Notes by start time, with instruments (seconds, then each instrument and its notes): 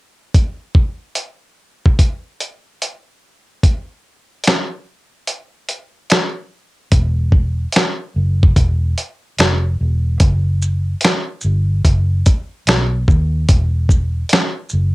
0.34 kick, closed hi-hat
0.75 kick
1.15 closed hi-hat
1.86 kick
1.99 kick, closed hi-hat
2.41 closed hi-hat
2.82 closed hi-hat
3.63 kick, closed hi-hat
4.44 finger snap, snare, closed hi-hat
5.27 closed hi-hat
5.69 closed hi-hat
6.10 finger snap, snare, closed hi-hat
6.92 fingered electric bass E1, kick, closed hi-hat
7.32 kick
7.72 finger snap, snare, closed hi-hat
8.16 fingered electric bass F#1
8.43 kick
8.56 fingered electric bass E1, kick, closed hi-hat
8.98 closed hi-hat
9.39 fingered electric bass F1, finger snap, snare, closed hi-hat
9.81 fingered electric bass E1
10.20 fingered electric bass F#1, kick, closed hi-hat
10.62 shaker
11.01 finger snap, snare, closed hi-hat
11.41 fingered electric bass G1, shaker
11.85 fingered electric bass F#1, kick, closed hi-hat
12.26 kick, closed hi-hat, shaker
12.67 fingered electric bass B1, finger snap, snare, closed hi-hat
13.08 fingered electric bass D#2, kick, shaker
13.49 fingered electric bass E1, kick, closed hi-hat
13.89 kick, shaker
14.29 finger snap, snare, closed hi-hat
14.69 fingered electric bass F#1, shaker